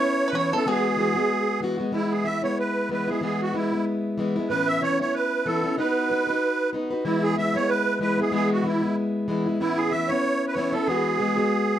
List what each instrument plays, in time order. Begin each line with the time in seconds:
Already playing: steel-string acoustic guitar B3 C#4 E4, five-string banjo C#5, accordion C#5
0.28 five-string banjo B4, accordion B4
0.33 steel-string acoustic guitar E3 B3 C#4 E4, five-string banjo C#5
0.37 accordion C#5
0.52 steel-string acoustic guitar B3 C#4 E4, five-string banjo A4
0.56 accordion A4
0.66 steel-string acoustic guitar E3 G#3 B3 F#4, five-string banjo G#4
0.70 accordion G#4
0.97 steel-string acoustic guitar E3 G#3 B3 F#4
1.15 steel-string acoustic guitar G#3 B3 F#4
1.61 steel-string acoustic guitar E3 G#3 B3 F#4
1.78 steel-string acoustic guitar G#3 B3 F#4
1.92 steel-string acoustic guitar E3 G#3 B3 E4, accordion E4
2.11 accordion G#4
2.24 steel-string acoustic guitar E3 G#3 B3 E4, accordion E5
2.42 steel-string acoustic guitar G#3 B3 E4, accordion C#5
2.59 accordion B4
2.89 steel-string acoustic guitar E3 G#3 B3 E4, accordion B4
3.08 steel-string acoustic guitar G#3 B3 E4, accordion G#4
3.21 steel-string acoustic guitar E3 G#3 B3 E4, accordion G#4
3.42 accordion F#4
3.54 steel-string acoustic guitar E3 G#3 B3 E4, accordion E4
3.72 steel-string acoustic guitar G#3 B3 E4
4.18 steel-string acoustic guitar E3 G#3 B3 E4
4.36 steel-string acoustic guitar G#3 B3 E4
4.49 steel-string acoustic guitar A2 E3 B3 C#4 E4, accordion B4
4.67 accordion E5
4.81 steel-string acoustic guitar E3 B3 C#4 E4, accordion C#5
4.99 steel-string acoustic guitar B3 C#4 E4, accordion C#5
5.14 accordion B4
5.45 steel-string acoustic guitar E3 B3 C#4 E4, accordion A4
5.64 steel-string acoustic guitar B3 C#4 E4
5.78 steel-string acoustic guitar B3 D#4 F#4 B4, accordion B4
6.10 steel-string acoustic guitar B3 D#4 F#4 B4
6.27 steel-string acoustic guitar D#4 F#4 B4
6.73 steel-string acoustic guitar B3 D#4 F#4 B4
6.91 steel-string acoustic guitar D#4 F#4 B4
7.04 steel-string acoustic guitar E3 G#3 B3 E4, accordion E4
7.23 accordion G#4
7.36 steel-string acoustic guitar E3 G#3 B3 E4, accordion E5
7.54 steel-string acoustic guitar G#3 B3 E4, accordion C#5
7.69 accordion B4
8.00 steel-string acoustic guitar E3 G#3 B3 E4, accordion B4
8.18 steel-string acoustic guitar G#3 B3 E4, accordion G#4
8.31 steel-string acoustic guitar E3 G#3 B3 E4, accordion G#4
8.53 accordion F#4
8.64 steel-string acoustic guitar E3 G#3 B3 E4, accordion E4
8.82 steel-string acoustic guitar G#3 B3 E4
9.28 steel-string acoustic guitar E3 G#3 B3 E4
9.46 steel-string acoustic guitar G#3 B3 E4
9.60 steel-string acoustic guitar A2 E3 B3 C#4 E4, accordion E4
9.77 accordion G#4
9.91 steel-string acoustic guitar E3 B3 C#4, accordion E5
9.95 steel-string acoustic guitar E4
10.08 steel-string acoustic guitar C#4 E4, accordion C#5
10.13 steel-string acoustic guitar B3
10.47 accordion B4
10.54 steel-string acoustic guitar E3 B3, accordion C#5
10.58 steel-string acoustic guitar C#4 E4
10.72 steel-string acoustic guitar C#4 E4, accordion A4
10.76 steel-string acoustic guitar B3
10.86 steel-string acoustic guitar E3 G#3 B3, accordion G#4
10.90 steel-string acoustic guitar F#4
11.19 steel-string acoustic guitar E3 G#3 B3 F#4
11.36 steel-string acoustic guitar G#3 B3 F#4